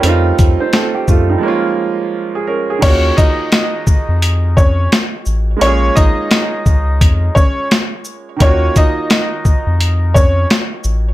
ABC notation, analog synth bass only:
X:1
M:4/4
L:1/16
Q:"Swing 16ths" 1/4=86
K:Ebm
V:1 name="Analog synth bass" clef=bass
F,,2 F,, z3 G,,2 z8 | E,,2 z4 z F,,4- F,, z2 =A,,,2 | B,,,2 B,,, z3 D,,2 F,,2 z6 | E,,2 z4 z F,,4- F,, z2 =A,,,2 |]